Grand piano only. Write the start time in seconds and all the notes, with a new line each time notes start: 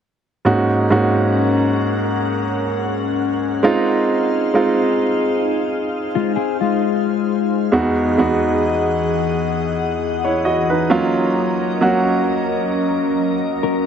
0.45 G#2 A#3 C#4 D#4 F#4
0.90 G#2 A#3 C#4 D#4 F#4
3.63 G#3 C4 D#4 F4
4.54 G#3 C4 D#4 F4
7.72 E2 G#3 B3 D#4 F#4
8.18 E2 G#3 B3 D#4 F#4
10.24 E4 C#5
10.45 F#4 D#5
10.70 D#4 B4
10.90 F#3 A#3 C#4 F4
11.81 F#3 A#3 C#4 F#4